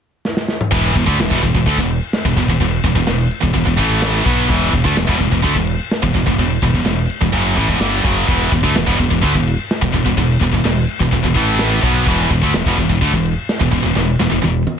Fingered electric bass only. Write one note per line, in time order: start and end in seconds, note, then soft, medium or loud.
0.72 0.94 E1 loud
0.95 1.06 E1 medium
1.07 1.18 D2 medium
1.19 1.30 E1 medium
1.31 1.42 E1 medium
1.43 1.54 E1 medium
1.55 1.65 E1 medium
1.66 1.77 D2 medium
1.78 2.00 E1 medium
2.25 2.36 E1 medium
2.36 2.48 E1 medium
2.48 2.59 E1 medium
2.60 2.82 E1 medium
2.84 2.95 E1 medium
2.95 3.07 E1 medium
3.07 3.30 E1 medium
3.43 3.54 E1 medium
3.55 3.66 E1 medium
3.67 3.78 E1 medium
3.79 4.23 A1 loud
4.26 4.48 B1 medium
4.49 4.71 E1 medium
4.73 4.84 E1 medium
4.85 4.94 D2 medium
4.95 5.07 E1 medium
5.08 5.19 E1 medium
5.20 5.31 E1 medium
5.32 5.43 E1 medium
5.44 5.55 D2 medium
5.56 5.78 E1 medium
6.03 6.14 E1 medium
6.15 6.26 E1 medium
6.27 6.37 E1 medium
6.38 6.60 E1 medium
6.62 6.73 E1 medium
6.74 6.85 E1 medium
6.85 7.08 E1 medium
7.22 7.33 E1 medium
7.34 7.55 F#1 medium
7.57 7.68 A1 medium
7.69 7.79 E1 medium
7.80 8.02 G1 medium
8.04 8.26 F#1 medium
8.28 8.50 E1 medium
8.52 8.63 E1 medium
8.63 8.74 D2 medium
8.76 8.86 E1 medium
8.88 8.98 E1 medium
8.99 9.10 E1 medium
9.11 9.22 E1 medium
9.23 9.34 D2 medium
9.35 9.57 E1 medium
9.82 9.93 E1 medium
9.94 10.05 E1 medium
10.05 10.16 E1 medium
10.17 10.39 E1 medium
10.41 10.52 E1 medium
10.53 10.64 E1 medium
10.64 10.86 E1 medium
11.00 11.11 E1 medium
11.12 11.23 E1 medium
11.23 11.34 E1 medium
11.35 11.79 A1 medium
11.83 12.05 B1 medium
12.06 12.28 E1 medium
12.30 12.41 E1 medium
12.43 12.53 D2 medium
12.54 12.65 E1 medium
12.66 12.77 E1 medium
12.78 12.89 E1 medium
12.89 13.00 E1 medium
13.02 13.12 D2 medium
13.14 13.35 E1 medium
13.61 13.71 E1 medium
13.72 13.83 E1 medium
13.84 13.95 E1 medium
13.96 14.18 E1 medium
14.19 14.30 E1 medium
14.31 14.42 E1 medium
14.43 14.65 E1 medium